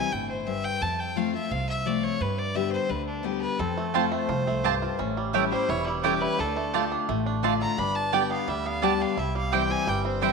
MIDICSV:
0, 0, Header, 1, 6, 480
1, 0, Start_track
1, 0, Key_signature, 0, "major"
1, 0, Tempo, 348635
1, 1119, Time_signature, 4, 2, 24, 8
1, 14214, End_track
2, 0, Start_track
2, 0, Title_t, "Fiddle"
2, 0, Program_c, 0, 110
2, 0, Note_on_c, 0, 80, 110
2, 162, Note_on_c, 0, 79, 86
2, 183, Note_off_c, 0, 80, 0
2, 397, Note_off_c, 0, 79, 0
2, 405, Note_on_c, 0, 72, 59
2, 643, Note_on_c, 0, 76, 93
2, 664, Note_off_c, 0, 72, 0
2, 884, Note_on_c, 0, 79, 108
2, 904, Note_off_c, 0, 76, 0
2, 1123, Note_on_c, 0, 81, 95
2, 1144, Note_off_c, 0, 79, 0
2, 1362, Note_on_c, 0, 79, 92
2, 1382, Note_off_c, 0, 81, 0
2, 1603, Note_on_c, 0, 77, 83
2, 1624, Note_off_c, 0, 79, 0
2, 1835, Note_off_c, 0, 77, 0
2, 1843, Note_on_c, 0, 76, 84
2, 2080, Note_on_c, 0, 77, 94
2, 2101, Note_off_c, 0, 76, 0
2, 2321, Note_off_c, 0, 77, 0
2, 2328, Note_on_c, 0, 76, 92
2, 2561, Note_on_c, 0, 74, 80
2, 2581, Note_off_c, 0, 76, 0
2, 2800, Note_on_c, 0, 73, 99
2, 2821, Note_off_c, 0, 74, 0
2, 3046, Note_on_c, 0, 71, 82
2, 3067, Note_off_c, 0, 73, 0
2, 3279, Note_on_c, 0, 74, 91
2, 3299, Note_off_c, 0, 71, 0
2, 3514, Note_on_c, 0, 76, 101
2, 3534, Note_off_c, 0, 74, 0
2, 3735, Note_off_c, 0, 76, 0
2, 3743, Note_on_c, 0, 72, 96
2, 3988, Note_on_c, 0, 71, 83
2, 4009, Note_off_c, 0, 72, 0
2, 4222, Note_off_c, 0, 71, 0
2, 4230, Note_on_c, 0, 62, 63
2, 4464, Note_on_c, 0, 67, 73
2, 4485, Note_off_c, 0, 62, 0
2, 4690, Note_off_c, 0, 67, 0
2, 4698, Note_on_c, 0, 71, 99
2, 4943, Note_on_c, 0, 69, 77
2, 4963, Note_off_c, 0, 71, 0
2, 5675, Note_on_c, 0, 72, 95
2, 5696, Note_off_c, 0, 69, 0
2, 6874, Note_off_c, 0, 72, 0
2, 7580, Note_on_c, 0, 72, 96
2, 7835, Note_on_c, 0, 73, 100
2, 7855, Note_off_c, 0, 72, 0
2, 8064, Note_off_c, 0, 73, 0
2, 8073, Note_on_c, 0, 64, 47
2, 8293, Note_on_c, 0, 67, 88
2, 8314, Note_off_c, 0, 64, 0
2, 8544, Note_on_c, 0, 71, 116
2, 8564, Note_off_c, 0, 67, 0
2, 8801, Note_on_c, 0, 69, 91
2, 8822, Note_off_c, 0, 71, 0
2, 9522, Note_off_c, 0, 69, 0
2, 10475, Note_on_c, 0, 82, 101
2, 10708, Note_on_c, 0, 83, 101
2, 10729, Note_off_c, 0, 82, 0
2, 10947, Note_on_c, 0, 81, 97
2, 10968, Note_off_c, 0, 83, 0
2, 11204, Note_on_c, 0, 79, 85
2, 11224, Note_off_c, 0, 81, 0
2, 11435, Note_off_c, 0, 79, 0
2, 11443, Note_on_c, 0, 77, 87
2, 11688, Note_on_c, 0, 76, 88
2, 11709, Note_off_c, 0, 77, 0
2, 11932, Note_on_c, 0, 77, 98
2, 11953, Note_off_c, 0, 76, 0
2, 12166, Note_on_c, 0, 81, 99
2, 12187, Note_off_c, 0, 77, 0
2, 12412, Note_on_c, 0, 77, 97
2, 12432, Note_off_c, 0, 81, 0
2, 12645, Note_on_c, 0, 76, 86
2, 12665, Note_off_c, 0, 77, 0
2, 12884, Note_off_c, 0, 76, 0
2, 12891, Note_on_c, 0, 77, 86
2, 13123, Note_on_c, 0, 79, 98
2, 13144, Note_off_c, 0, 77, 0
2, 13367, Note_on_c, 0, 80, 118
2, 13387, Note_off_c, 0, 79, 0
2, 13608, Note_on_c, 0, 79, 96
2, 13628, Note_off_c, 0, 80, 0
2, 13835, Note_off_c, 0, 79, 0
2, 13843, Note_on_c, 0, 72, 76
2, 14074, Note_on_c, 0, 76, 93
2, 14094, Note_off_c, 0, 72, 0
2, 14214, Note_off_c, 0, 76, 0
2, 14214, End_track
3, 0, Start_track
3, 0, Title_t, "Mandolin"
3, 0, Program_c, 1, 25
3, 5425, Note_on_c, 1, 60, 85
3, 5432, Note_on_c, 1, 65, 93
3, 5435, Note_on_c, 1, 72, 96
3, 5437, Note_on_c, 1, 81, 90
3, 5555, Note_off_c, 1, 60, 0
3, 5559, Note_off_c, 1, 65, 0
3, 5560, Note_off_c, 1, 72, 0
3, 5561, Note_off_c, 1, 81, 0
3, 6391, Note_on_c, 1, 60, 101
3, 6397, Note_on_c, 1, 65, 83
3, 6401, Note_on_c, 1, 72, 109
3, 6404, Note_on_c, 1, 81, 110
3, 6518, Note_off_c, 1, 60, 0
3, 6521, Note_off_c, 1, 65, 0
3, 6523, Note_off_c, 1, 72, 0
3, 6525, Note_off_c, 1, 81, 0
3, 7347, Note_on_c, 1, 57, 99
3, 7352, Note_on_c, 1, 64, 91
3, 7358, Note_on_c, 1, 73, 95
3, 7358, Note_on_c, 1, 79, 98
3, 7477, Note_off_c, 1, 57, 0
3, 7479, Note_off_c, 1, 64, 0
3, 7482, Note_off_c, 1, 73, 0
3, 7482, Note_off_c, 1, 79, 0
3, 8308, Note_on_c, 1, 57, 97
3, 8314, Note_on_c, 1, 64, 92
3, 8318, Note_on_c, 1, 73, 94
3, 8323, Note_on_c, 1, 79, 102
3, 8437, Note_off_c, 1, 57, 0
3, 8440, Note_off_c, 1, 64, 0
3, 8442, Note_off_c, 1, 73, 0
3, 8445, Note_off_c, 1, 79, 0
3, 9274, Note_on_c, 1, 57, 84
3, 9277, Note_on_c, 1, 65, 81
3, 9281, Note_on_c, 1, 74, 90
3, 9287, Note_on_c, 1, 81, 97
3, 9400, Note_off_c, 1, 57, 0
3, 9402, Note_off_c, 1, 65, 0
3, 9404, Note_off_c, 1, 74, 0
3, 9407, Note_off_c, 1, 81, 0
3, 10232, Note_on_c, 1, 57, 90
3, 10241, Note_on_c, 1, 65, 95
3, 10246, Note_on_c, 1, 74, 106
3, 10246, Note_on_c, 1, 81, 103
3, 10360, Note_off_c, 1, 57, 0
3, 10365, Note_off_c, 1, 65, 0
3, 10367, Note_off_c, 1, 74, 0
3, 10367, Note_off_c, 1, 81, 0
3, 11186, Note_on_c, 1, 59, 79
3, 11191, Note_on_c, 1, 74, 101
3, 11193, Note_on_c, 1, 67, 83
3, 11197, Note_on_c, 1, 79, 97
3, 11317, Note_off_c, 1, 59, 0
3, 11320, Note_off_c, 1, 74, 0
3, 11321, Note_off_c, 1, 67, 0
3, 11323, Note_off_c, 1, 79, 0
3, 12146, Note_on_c, 1, 59, 88
3, 12155, Note_on_c, 1, 67, 94
3, 12158, Note_on_c, 1, 74, 100
3, 12160, Note_on_c, 1, 79, 105
3, 12277, Note_off_c, 1, 59, 0
3, 12282, Note_off_c, 1, 67, 0
3, 12284, Note_off_c, 1, 74, 0
3, 12284, Note_off_c, 1, 79, 0
3, 13107, Note_on_c, 1, 60, 89
3, 13115, Note_on_c, 1, 64, 86
3, 13117, Note_on_c, 1, 72, 98
3, 13121, Note_on_c, 1, 79, 97
3, 13238, Note_off_c, 1, 60, 0
3, 13242, Note_off_c, 1, 64, 0
3, 13244, Note_off_c, 1, 72, 0
3, 13245, Note_off_c, 1, 79, 0
3, 14065, Note_on_c, 1, 60, 85
3, 14071, Note_on_c, 1, 64, 91
3, 14077, Note_on_c, 1, 72, 98
3, 14078, Note_on_c, 1, 79, 112
3, 14197, Note_off_c, 1, 60, 0
3, 14200, Note_off_c, 1, 64, 0
3, 14204, Note_off_c, 1, 72, 0
3, 14204, Note_off_c, 1, 79, 0
3, 14214, End_track
4, 0, Start_track
4, 0, Title_t, "Five-string banjo"
4, 0, Program_c, 2, 105
4, 4957, Note_on_c, 2, 60, 71
4, 5197, Note_on_c, 2, 57, 59
4, 5432, Note_on_c, 2, 65, 59
4, 5630, Note_off_c, 2, 60, 0
4, 5662, Note_off_c, 2, 57, 0
4, 5668, Note_on_c, 2, 57, 76
4, 5892, Note_off_c, 2, 65, 0
4, 5909, Note_on_c, 2, 65, 68
4, 6154, Note_off_c, 2, 57, 0
4, 6159, Note_on_c, 2, 57, 61
4, 6394, Note_on_c, 2, 67, 54
4, 6586, Note_off_c, 2, 65, 0
4, 6639, Note_on_c, 2, 65, 58
4, 6874, Note_on_c, 2, 61, 70
4, 6875, Note_off_c, 2, 67, 0
4, 6876, Note_off_c, 2, 65, 0
4, 7116, Note_off_c, 2, 57, 0
4, 7122, Note_on_c, 2, 55, 59
4, 7362, Note_on_c, 2, 64, 57
4, 7549, Note_off_c, 2, 61, 0
4, 7589, Note_off_c, 2, 55, 0
4, 7606, Note_on_c, 2, 55, 66
4, 7827, Note_off_c, 2, 64, 0
4, 7843, Note_on_c, 2, 64, 66
4, 8066, Note_off_c, 2, 55, 0
4, 8083, Note_on_c, 2, 55, 60
4, 8322, Note_on_c, 2, 67, 59
4, 8514, Note_off_c, 2, 64, 0
4, 8558, Note_on_c, 2, 64, 58
4, 8751, Note_off_c, 2, 55, 0
4, 8792, Note_off_c, 2, 64, 0
4, 8797, Note_on_c, 2, 62, 64
4, 8800, Note_off_c, 2, 67, 0
4, 9039, Note_on_c, 2, 57, 57
4, 9282, Note_on_c, 2, 67, 58
4, 9525, Note_off_c, 2, 62, 0
4, 9525, Note_on_c, 2, 62, 60
4, 9710, Note_off_c, 2, 57, 0
4, 9759, Note_on_c, 2, 57, 63
4, 9954, Note_off_c, 2, 67, 0
4, 9984, Note_off_c, 2, 62, 0
4, 10000, Note_on_c, 2, 62, 63
4, 10228, Note_off_c, 2, 62, 0
4, 10244, Note_on_c, 2, 62, 57
4, 10433, Note_off_c, 2, 57, 0
4, 10485, Note_on_c, 2, 50, 57
4, 10703, Note_off_c, 2, 62, 0
4, 10720, Note_on_c, 2, 62, 68
4, 10721, Note_off_c, 2, 50, 0
4, 11204, Note_on_c, 2, 67, 55
4, 11393, Note_off_c, 2, 62, 0
4, 11438, Note_on_c, 2, 59, 60
4, 11678, Note_on_c, 2, 55, 64
4, 11875, Note_off_c, 2, 67, 0
4, 11904, Note_off_c, 2, 59, 0
4, 11921, Note_on_c, 2, 59, 56
4, 12153, Note_on_c, 2, 62, 60
4, 12352, Note_off_c, 2, 55, 0
4, 12394, Note_on_c, 2, 50, 55
4, 12592, Note_off_c, 2, 59, 0
4, 12626, Note_off_c, 2, 62, 0
4, 12632, Note_on_c, 2, 64, 64
4, 12636, Note_off_c, 2, 50, 0
4, 12877, Note_on_c, 2, 55, 57
4, 13115, Note_on_c, 2, 67, 59
4, 13310, Note_off_c, 2, 64, 0
4, 13355, Note_on_c, 2, 60, 59
4, 13550, Note_off_c, 2, 55, 0
4, 13594, Note_on_c, 2, 55, 65
4, 13791, Note_off_c, 2, 67, 0
4, 13819, Note_off_c, 2, 60, 0
4, 13836, Note_on_c, 2, 60, 64
4, 14076, Note_on_c, 2, 64, 58
4, 14214, Note_off_c, 2, 55, 0
4, 14214, Note_off_c, 2, 60, 0
4, 14214, Note_off_c, 2, 64, 0
4, 14214, End_track
5, 0, Start_track
5, 0, Title_t, "Steel-string acoustic guitar"
5, 0, Program_c, 3, 25
5, 0, Note_on_c, 3, 60, 101
5, 0, Note_on_c, 3, 64, 97
5, 138, Note_off_c, 3, 60, 0
5, 142, Note_off_c, 3, 64, 0
5, 161, Note_on_c, 3, 45, 89
5, 616, Note_off_c, 3, 45, 0
5, 642, Note_on_c, 3, 43, 85
5, 1097, Note_off_c, 3, 43, 0
5, 1132, Note_on_c, 3, 41, 89
5, 1592, Note_on_c, 3, 53, 87
5, 1604, Note_on_c, 3, 57, 99
5, 1612, Note_on_c, 3, 60, 95
5, 1619, Note_on_c, 3, 65, 96
5, 1824, Note_off_c, 3, 65, 0
5, 1827, Note_off_c, 3, 53, 0
5, 1834, Note_off_c, 3, 57, 0
5, 1838, Note_off_c, 3, 60, 0
5, 1841, Note_on_c, 3, 65, 57
5, 1868, Note_on_c, 3, 60, 46
5, 2037, Note_off_c, 3, 41, 0
5, 2069, Note_off_c, 3, 65, 0
5, 2082, Note_off_c, 3, 60, 0
5, 2083, Note_on_c, 3, 48, 89
5, 2554, Note_on_c, 3, 53, 86
5, 2562, Note_on_c, 3, 57, 81
5, 2572, Note_on_c, 3, 60, 88
5, 2580, Note_on_c, 3, 65, 91
5, 2992, Note_off_c, 3, 48, 0
5, 3011, Note_off_c, 3, 53, 0
5, 3015, Note_off_c, 3, 57, 0
5, 3021, Note_off_c, 3, 60, 0
5, 3024, Note_off_c, 3, 65, 0
5, 3038, Note_on_c, 3, 43, 84
5, 3503, Note_on_c, 3, 50, 90
5, 3515, Note_on_c, 3, 55, 97
5, 3520, Note_on_c, 3, 59, 93
5, 3529, Note_on_c, 3, 67, 97
5, 3949, Note_off_c, 3, 43, 0
5, 3966, Note_off_c, 3, 50, 0
5, 3972, Note_off_c, 3, 55, 0
5, 3974, Note_off_c, 3, 59, 0
5, 3979, Note_off_c, 3, 67, 0
5, 3984, Note_on_c, 3, 50, 90
5, 4430, Note_off_c, 3, 50, 0
5, 4447, Note_on_c, 3, 50, 88
5, 4462, Note_on_c, 3, 55, 83
5, 4466, Note_on_c, 3, 59, 89
5, 4477, Note_on_c, 3, 67, 87
5, 4917, Note_off_c, 3, 50, 0
5, 4925, Note_off_c, 3, 55, 0
5, 4927, Note_off_c, 3, 59, 0
5, 4933, Note_off_c, 3, 67, 0
5, 4948, Note_on_c, 3, 41, 95
5, 5424, Note_on_c, 3, 53, 84
5, 5434, Note_on_c, 3, 57, 88
5, 5445, Note_on_c, 3, 60, 101
5, 5451, Note_on_c, 3, 65, 94
5, 5864, Note_off_c, 3, 41, 0
5, 5886, Note_off_c, 3, 53, 0
5, 5891, Note_off_c, 3, 57, 0
5, 5897, Note_off_c, 3, 60, 0
5, 5899, Note_off_c, 3, 65, 0
5, 5903, Note_on_c, 3, 41, 88
5, 6365, Note_off_c, 3, 41, 0
5, 6387, Note_on_c, 3, 43, 80
5, 6848, Note_off_c, 3, 43, 0
5, 6866, Note_on_c, 3, 45, 92
5, 7341, Note_on_c, 3, 52, 100
5, 7355, Note_on_c, 3, 55, 99
5, 7362, Note_on_c, 3, 61, 94
5, 7370, Note_on_c, 3, 64, 89
5, 7578, Note_off_c, 3, 64, 0
5, 7581, Note_off_c, 3, 52, 0
5, 7588, Note_off_c, 3, 55, 0
5, 7592, Note_off_c, 3, 61, 0
5, 7595, Note_on_c, 3, 64, 64
5, 7618, Note_on_c, 3, 61, 49
5, 7784, Note_off_c, 3, 45, 0
5, 7825, Note_off_c, 3, 64, 0
5, 7836, Note_off_c, 3, 61, 0
5, 7837, Note_on_c, 3, 40, 95
5, 8315, Note_on_c, 3, 52, 84
5, 8322, Note_on_c, 3, 55, 87
5, 8333, Note_on_c, 3, 61, 104
5, 8342, Note_on_c, 3, 64, 91
5, 8750, Note_off_c, 3, 40, 0
5, 8772, Note_off_c, 3, 52, 0
5, 8776, Note_off_c, 3, 55, 0
5, 8781, Note_off_c, 3, 61, 0
5, 8786, Note_off_c, 3, 64, 0
5, 8798, Note_on_c, 3, 50, 89
5, 9264, Note_off_c, 3, 50, 0
5, 9281, Note_on_c, 3, 50, 91
5, 9292, Note_on_c, 3, 57, 96
5, 9292, Note_on_c, 3, 62, 85
5, 9308, Note_on_c, 3, 65, 108
5, 9736, Note_off_c, 3, 50, 0
5, 9741, Note_off_c, 3, 57, 0
5, 9741, Note_off_c, 3, 62, 0
5, 9749, Note_off_c, 3, 65, 0
5, 9759, Note_on_c, 3, 45, 99
5, 10225, Note_on_c, 3, 50, 88
5, 10236, Note_on_c, 3, 57, 87
5, 10246, Note_on_c, 3, 62, 83
5, 10250, Note_on_c, 3, 65, 91
5, 10671, Note_off_c, 3, 45, 0
5, 10688, Note_off_c, 3, 50, 0
5, 10693, Note_off_c, 3, 57, 0
5, 10699, Note_off_c, 3, 62, 0
5, 10700, Note_off_c, 3, 65, 0
5, 10715, Note_on_c, 3, 43, 92
5, 11185, Note_on_c, 3, 50, 97
5, 11196, Note_on_c, 3, 55, 83
5, 11202, Note_on_c, 3, 59, 88
5, 11209, Note_on_c, 3, 67, 102
5, 11629, Note_off_c, 3, 43, 0
5, 11648, Note_off_c, 3, 50, 0
5, 11654, Note_off_c, 3, 55, 0
5, 11657, Note_off_c, 3, 59, 0
5, 11660, Note_off_c, 3, 67, 0
5, 11669, Note_on_c, 3, 50, 93
5, 12126, Note_off_c, 3, 50, 0
5, 12143, Note_on_c, 3, 50, 80
5, 12152, Note_on_c, 3, 55, 92
5, 12161, Note_on_c, 3, 59, 84
5, 12167, Note_on_c, 3, 67, 91
5, 12607, Note_off_c, 3, 50, 0
5, 12612, Note_off_c, 3, 55, 0
5, 12616, Note_off_c, 3, 59, 0
5, 12619, Note_off_c, 3, 67, 0
5, 12631, Note_on_c, 3, 48, 95
5, 13113, Note_on_c, 3, 52, 91
5, 13119, Note_on_c, 3, 55, 85
5, 13135, Note_on_c, 3, 60, 89
5, 13137, Note_on_c, 3, 64, 100
5, 13548, Note_off_c, 3, 48, 0
5, 13573, Note_off_c, 3, 52, 0
5, 13576, Note_off_c, 3, 55, 0
5, 13584, Note_off_c, 3, 60, 0
5, 13584, Note_off_c, 3, 64, 0
5, 13593, Note_on_c, 3, 43, 86
5, 14061, Note_on_c, 3, 52, 84
5, 14073, Note_on_c, 3, 55, 80
5, 14078, Note_on_c, 3, 60, 90
5, 14087, Note_on_c, 3, 64, 93
5, 14214, Note_off_c, 3, 43, 0
5, 14214, Note_off_c, 3, 52, 0
5, 14214, Note_off_c, 3, 55, 0
5, 14214, Note_off_c, 3, 60, 0
5, 14214, Note_off_c, 3, 64, 0
5, 14214, End_track
6, 0, Start_track
6, 0, Title_t, "Upright bass"
6, 0, Program_c, 4, 32
6, 167, Note_on_c, 4, 31, 85
6, 919, Note_off_c, 4, 31, 0
6, 1120, Note_on_c, 4, 41, 85
6, 1874, Note_off_c, 4, 41, 0
6, 2075, Note_on_c, 4, 36, 93
6, 2831, Note_off_c, 4, 36, 0
6, 3035, Note_on_c, 4, 43, 91
6, 3791, Note_off_c, 4, 43, 0
6, 3985, Note_on_c, 4, 38, 90
6, 4745, Note_off_c, 4, 38, 0
6, 4945, Note_on_c, 4, 41, 92
6, 5705, Note_off_c, 4, 41, 0
6, 5899, Note_on_c, 4, 36, 90
6, 6661, Note_off_c, 4, 36, 0
6, 6871, Note_on_c, 4, 33, 82
6, 7629, Note_off_c, 4, 33, 0
6, 7830, Note_on_c, 4, 28, 97
6, 8589, Note_off_c, 4, 28, 0
6, 8791, Note_on_c, 4, 38, 86
6, 9549, Note_off_c, 4, 38, 0
6, 9758, Note_on_c, 4, 33, 95
6, 10514, Note_off_c, 4, 33, 0
6, 10713, Note_on_c, 4, 31, 93
6, 11471, Note_off_c, 4, 31, 0
6, 11669, Note_on_c, 4, 38, 87
6, 12429, Note_off_c, 4, 38, 0
6, 12625, Note_on_c, 4, 36, 82
6, 13387, Note_off_c, 4, 36, 0
6, 13590, Note_on_c, 4, 31, 91
6, 14214, Note_off_c, 4, 31, 0
6, 14214, End_track
0, 0, End_of_file